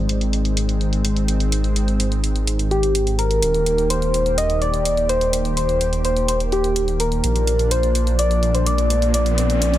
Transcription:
0.00 3.40 G#1 medium
0.00 7.20 D#3 medium
0.00 3.39 G#3 medium
0.00 3.39 C4 medium
0.09 closed hi-hat medium
0.21 closed hi-hat soft
0.33 closed hi-hat medium
0.45 closed hi-hat soft
0.57 closed hi-hat medium
0.69 closed hi-hat soft
0.81 closed hi-hat soft
0.93 closed hi-hat soft
1.05 closed hi-hat medium
1.16 closed hi-hat soft
1.28 closed hi-hat medium
1.40 closed hi-hat soft
1.52 closed hi-hat medium
1.64 closed hi-hat soft
1.76 closed hi-hat medium
1.88 closed hi-hat soft
2.00 closed hi-hat medium
2.12 closed hi-hat soft
2.24 closed hi-hat medium
2.36 closed hi-hat soft
2.47 closed hi-hat medium
2.59 closed hi-hat soft
2.71 3.20 G4 loud
2.71 closed hi-hat soft
2.83 closed hi-hat soft
2.95 closed hi-hat medium
3.07 closed hi-hat soft
3.19 3.92 A#4 loud
3.19 closed hi-hat medium
3.31 closed hi-hat soft
3.42 7.21 D#1 medium
3.42 9.78 A#3 medium
3.42 7.20 G4 medium
3.42 closed hi-hat medium
3.54 closed hi-hat soft
3.66 closed hi-hat medium
3.78 closed hi-hat soft
3.90 4.39 C5 loud
3.90 closed hi-hat medium
4.02 closed hi-hat soft
4.14 closed hi-hat medium
4.26 closed hi-hat soft
4.38 4.63 D#5 loud
4.38 closed hi-hat medium
4.50 closed hi-hat soft
4.62 5.11 D5 loud
4.62 closed hi-hat soft
4.74 closed hi-hat soft
4.85 closed hi-hat medium
4.97 closed hi-hat soft
5.09 5.56 C5 loud
5.09 closed hi-hat medium
5.21 closed hi-hat soft
5.33 closed hi-hat medium
5.45 closed hi-hat soft
5.57 6.01 C5 loud
5.57 closed hi-hat medium
5.69 closed hi-hat soft
5.81 closed hi-hat medium
5.93 closed hi-hat soft
6.05 6.27 C5 loud
6.05 closed hi-hat medium
6.17 closed hi-hat soft
6.28 6.39 C5 loud
6.28 closed hi-hat medium
6.40 closed hi-hat soft
6.52 7.02 G4 loud
6.52 closed hi-hat soft
6.64 closed hi-hat soft
6.76 closed hi-hat medium
6.88 closed hi-hat soft
7.00 7.73 A#4 loud
7.00 closed hi-hat medium
7.12 closed hi-hat soft
7.24 9.78 A#1 medium
7.24 9.78 F3 medium
7.24 9.78 D4 medium
7.24 closed hi-hat medium
7.24 riser medium
7.36 closed hi-hat soft
7.47 closed hi-hat medium
7.59 closed hi-hat soft
7.71 8.21 C5 loud
7.71 closed hi-hat medium
7.83 closed hi-hat soft
7.95 closed hi-hat medium
8.07 closed hi-hat soft
8.19 8.56 D5 loud
8.19 closed hi-hat medium
8.31 closed hi-hat soft
8.43 closed hi-hat soft
8.55 8.66 C5 medium
8.55 closed hi-hat soft
8.66 9.11 D5 loud
8.66 closed hi-hat medium
8.78 closed hi-hat soft
8.90 closed hi-hat medium
9.02 closed hi-hat soft
9.14 9.78 D5 loud
9.14 closed hi-hat medium
9.26 closed hi-hat soft
9.38 closed hi-hat medium
9.50 closed hi-hat soft
9.62 closed hi-hat medium
9.74 closed hi-hat soft

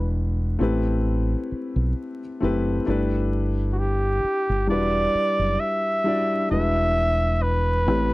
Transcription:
0.00 0.56 E1 medium
0.00 0.59 G#3 medium
0.00 0.60 D4 medium
0.00 0.59 E4 medium
0.00 0.61 F#4 medium
0.00 0.11 B4 medium
0.00 0.61 B4 medium
0.59 1.34 A1 medium
0.59 2.19 A3 medium
0.59 2.19 C4 medium
0.59 2.20 E4 medium
0.59 2.20 G4 medium
0.63 2.21 B4 medium
1.52 muted fingered electric bass stroke soft
1.76 1.92 B1 medium
2.40 2.79 F#1 medium
2.40 2.81 A3 medium
2.40 2.81 C4 medium
2.40 2.82 E4 medium
2.40 2.82 G4 medium
2.40 2.83 B4 medium
2.86 4.19 G1 medium
2.86 4.46 A3 medium
2.86 4.47 D4 medium
2.86 4.47 E4 medium
2.86 4.48 G4 medium
2.90 4.48 B4 medium
3.72 3.80 F#4 medium
3.78 4.69 G4 medium
4.24 muted fingered electric bass stroke soft
4.49 4.70 G1 medium
4.67 5.06 E1 medium
4.67 5.88 G3 medium
4.67 5.88 D4 medium
4.67 5.89 E4 medium
4.67 5.89 F#4 medium
4.67 5.61 D5 loud
4.72 5.90 B4 medium
5.15 muted fingered electric bass stroke soft
5.39 5.56 F#1 medium
5.60 6.50 E5 loud
6.04 6.44 G3 medium
6.04 6.45 D4 medium
6.04 6.45 E4 medium
6.04 6.46 F#4 medium
6.08 6.46 D5 medium
6.49 7.88 E1 medium
6.49 6.56 G3 medium
6.49 7.86 D4 medium
6.49 7.87 E4 medium
6.49 7.87 F#4 medium
6.49 7.44 E5 loud
6.53 7.89 G#3 medium
6.53 7.88 B4 medium
7.42 8.14 B4 loud
7.86 8.14 A1 medium
7.86 8.14 A3 medium
7.86 8.14 C4 medium
7.86 8.14 E4 medium
7.86 8.14 G4 medium
7.90 8.14 B4 medium

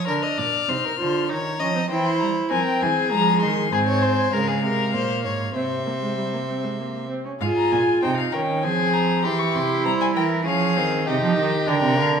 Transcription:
0.06 0.16 D3 medium
0.06 0.64 D4 medium
0.06 0.24 A#4 medium
0.06 1.31 F6 medium
0.23 0.40 D#5 medium
0.38 0.46 A#2 medium
0.38 0.71 D5 medium
0.68 0.76 C3 medium
0.68 0.98 D#4 medium
0.68 0.86 C5 medium
0.85 0.99 A#4 medium
0.98 1.31 D3 medium
0.98 1.29 F4 medium
0.98 1.29 C5 medium
1.29 1.60 D#3 medium
1.29 1.37 D#4 medium
1.29 1.61 C#5 medium
1.29 1.89 A#5 medium
1.60 1.90 F3 medium
1.60 1.74 C#4 medium
1.60 1.90 D#5 medium
1.75 1.81 C4 medium
1.90 2.21 E3 medium
1.90 2.52 E4 medium
1.90 2.50 C5 medium
1.90 2.07 G5 medium
2.05 2.19 C6 medium
2.20 2.30 G3 medium
2.20 2.28 A#5 medium
2.50 2.60 F3 medium
2.50 3.13 C4 medium
2.50 2.84 A#4 medium
2.50 2.65 G#5 medium
2.65 2.82 G5 medium
2.80 2.90 E3 medium
2.80 3.72 G#4 medium
2.80 3.11 G#5 medium
3.12 3.44 F3 medium
3.12 3.71 G#3 medium
3.12 3.41 A#5 loud
3.41 3.72 D#3 medium
3.41 3.74 C6 loud
3.72 4.32 G#2 medium
3.72 4.32 C4 medium
3.72 3.79 G#4 medium
3.72 4.33 G#5 medium
3.88 4.04 C#5 medium
4.02 4.35 C5 medium
4.33 4.65 C#3 medium
4.33 4.95 G#3 medium
4.33 4.50 A#4 medium
4.33 5.54 F5 medium
4.48 4.63 G#4 medium
4.64 4.95 C3 medium
4.64 4.93 A#4 medium
4.94 5.26 A#2 medium
4.94 5.55 A#3 medium
4.94 5.24 C5 medium
5.25 5.55 G#2 medium
5.25 5.55 C#5 medium
5.55 7.07 C3 medium
5.55 5.63 C4 medium
5.55 7.08 C5 medium
5.55 7.07 E5 medium
5.86 5.93 A#3 medium
6.02 6.16 G#3 medium
6.17 6.23 G3 medium
6.33 6.39 A#3 medium
6.49 6.65 C4 medium
6.64 6.81 G#3 medium
6.80 7.09 A#3 medium
7.10 7.25 C4 medium
7.25 7.32 C#4 medium
7.41 7.49 G#2 medium
7.41 8.04 F4 medium
7.41 7.99 G#4 medium
7.41 7.47 F5 medium
7.57 7.74 A#5 medium
7.72 7.80 A#2 medium
7.72 8.02 G#5 medium
8.02 8.33 C3 medium
8.02 8.35 D#4 medium
8.02 8.10 C5 medium
8.02 8.16 G5 loud
8.17 8.34 F5 medium
8.32 8.65 D#3 medium
8.32 8.65 C#4 medium
8.32 8.40 A#4 medium
8.32 8.65 G5 medium
8.63 9.27 F3 medium
8.63 9.26 C4 medium
8.63 9.24 G#4 medium
8.63 8.95 G#5 loud
8.94 9.26 A#5 medium
9.24 9.57 E3 medium
9.24 10.45 E4 medium
9.24 9.87 G4 medium
9.24 9.40 C6 loud
9.39 9.57 C#6 medium
9.55 9.87 C3 medium
9.55 9.85 C6 medium
9.85 10.18 G3 medium
9.85 10.15 C5 medium
9.85 9.91 A#5 loud
10.01 10.07 G#5 medium
10.16 10.48 E3 medium
10.16 10.45 A#4 medium
10.16 10.24 G5 medium
10.45 10.79 F3 medium
10.45 10.78 C#4 medium
10.45 11.08 G#4 medium
10.45 11.06 F5 loud
10.77 11.07 D#3 medium
10.77 11.08 C4 medium
11.06 11.22 C3 loud
11.06 11.68 D#4 medium
11.06 11.69 G4 medium
11.06 11.70 D#5 medium
11.23 11.37 F3 loud
11.37 11.67 D#3 medium
11.67 11.74 D3 loud
11.67 12.20 D4 medium
11.67 12.20 A#4 medium
11.67 11.99 G5 medium
11.82 12.00 C3 medium
11.98 12.20 D3 loud
11.98 12.08 F5 medium

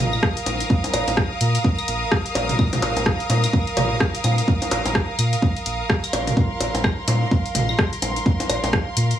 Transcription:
0.00 0.16 A#1 medium
0.00 9.19 A#4 medium
0.00 9.19 F5 medium
0.00 6.07 D#6 medium
0.13 claves medium
0.23 kick loud
0.23 cross-stick medium
0.37 closed hi-hat soft
0.46 0.64 A#1 medium
0.46 closed hi-hat medium
0.46 low bongo medium
0.60 closed hi-hat soft
0.70 kick loud
0.84 closed hi-hat soft
0.84 low bongo medium
0.94 1.03 A#1 loud
0.94 closed hi-hat medium
0.94 high bongo medium
0.94 claves medium
1.08 1.22 A#1 medium
1.08 closed hi-hat soft
1.08 low bongo medium
1.17 kick loud
1.17 cross-stick medium
1.41 1.58 A#2 loud
1.41 closed hi-hat medium
1.55 closed hi-hat medium
1.64 kick loud
1.79 closed hi-hat soft
1.79 claves medium
1.88 2.05 A#1 medium
1.88 closed hi-hat medium
2.12 kick loud
2.12 cross-stick loud
2.26 closed hi-hat soft
2.35 2.52 A#1 medium
2.35 closed hi-hat medium
2.35 high bongo medium
2.35 low bongo medium
2.49 closed hi-hat soft
2.49 mid tom medium
2.59 kick loud
2.59 claves medium
2.73 closed hi-hat medium
2.73 mid tom medium
2.73 low bongo medium
2.82 2.92 A#1 loud
2.82 closed hi-hat medium
2.82 high bongo medium
2.96 3.11 A#1 medium
2.96 closed hi-hat soft
2.96 low bongo medium
3.06 kick loud
3.06 cross-stick medium
3.20 closed hi-hat soft
3.30 3.47 A#2 loud
3.30 closed hi-hat loud
3.30 low bongo medium
3.44 closed hi-hat medium
3.44 claves medium
3.53 kick loud
3.67 closed hi-hat soft
3.77 3.94 A#1 loud
3.77 closed hi-hat medium
3.77 mid tom loud
3.77 high bongo medium
4.00 kick loud
4.00 cross-stick medium
4.15 closed hi-hat soft
4.24 4.42 A#2 medium
4.24 closed hi-hat medium
4.24 low bongo medium
4.24 claves medium
4.38 closed hi-hat soft
4.48 kick loud
4.62 closed hi-hat medium
4.62 low bongo medium
4.71 4.81 A#1 loud
4.71 closed hi-hat medium
4.71 high bongo medium
4.86 5.00 A#1 medium
4.86 closed hi-hat soft
4.86 low bongo medium
4.95 kick loud
4.95 cross-stick loud
5.19 5.36 A#2 loud
5.19 closed hi-hat loud
5.19 claves medium
5.33 closed hi-hat medium
5.42 kick loud
5.57 closed hi-hat soft
5.66 5.83 A#1 medium
5.66 closed hi-hat loud
5.90 kick loud
5.90 cross-stick loud
6.04 9.19 C6 medium
6.04 closed hi-hat soft
6.04 claves medium
6.13 6.30 A#1 medium
6.13 closed hi-hat loud
6.13 high bongo medium
6.13 low bongo medium
6.27 closed hi-hat soft
6.27 mid tom medium
6.37 kick loud
6.60 6.70 A#1 loud
6.60 closed hi-hat loud
6.60 high bongo medium
6.75 6.89 A#1 medium
6.75 closed hi-hat soft
6.75 low bongo medium
6.84 kick loud
6.84 cross-stick medium
6.84 claves medium
7.08 7.25 A#2 loud
7.08 closed hi-hat loud
7.08 low bongo medium
7.31 kick loud
7.46 closed hi-hat soft
7.55 7.72 A#1 medium
7.55 closed hi-hat loud
7.55 mid tom loud
7.69 claves medium
7.79 kick loud
7.79 cross-stick loud
7.93 closed hi-hat soft
8.02 8.19 A#1 medium
8.02 closed hi-hat loud
8.02 low bongo medium
8.16 closed hi-hat soft
8.26 kick loud
8.40 closed hi-hat soft
8.40 low bongo medium
8.49 8.59 A#1 loud
8.49 closed hi-hat loud
8.49 high bongo medium
8.49 claves medium
8.64 8.78 A#1 medium
8.64 closed hi-hat soft
8.64 low bongo medium
8.73 kick loud
8.73 cross-stick loud
8.97 9.14 A#2 loud
8.97 closed hi-hat loud
9.11 closed hi-hat soft

